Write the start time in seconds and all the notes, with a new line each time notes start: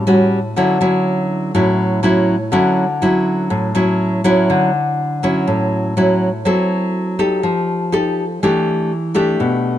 Already playing: A2
0.07 G3 C#4 F#4
0.56 D3 F#3 C#4 E4
0.81 F#3 C#4 E4
1.55 A2 F#3 C#4 E4
2.03 F#3 C#4 E4
2.52 D3 F#3 C#4 E4
3.02 F#3 C#4 E4
3.50 A2
3.75 F#3 C#4 E4
4.24 F#3 C#4 E4
4.50 D3
5.23 F#3 C#4 E4
5.47 A2
5.97 F#3 C#4 E4
6.45 F#3 C4 E4 A4
7.19 D#4 G4 A4
7.43 F3
7.92 D#4 G4 A4
8.43 E3 A3 D4 G4
9.15 A3 D4 G4
9.40 B2